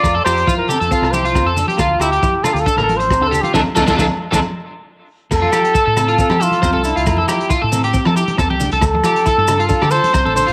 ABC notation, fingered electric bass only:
X:1
M:4/4
L:1/16
Q:1/4=136
K:F
V:1 name="Fingered electric bass" clef=bass
F,,2 F,,2 z3 F,, z C,,4 F,,2 z | D,,2 D,,2 z3 D,, z A,,,4 D,,2 z | D,, z D,, D,, D,, z2 D,, z8 | F,,2 z3 A,,4 F,2 z E,, C,,2 C,, |
F,,2 z3 A,,4 F,2 z E,, C,,2 C,, | D,,2 z3 G,,4 D,2 z C,, A,,,2 A,,, |]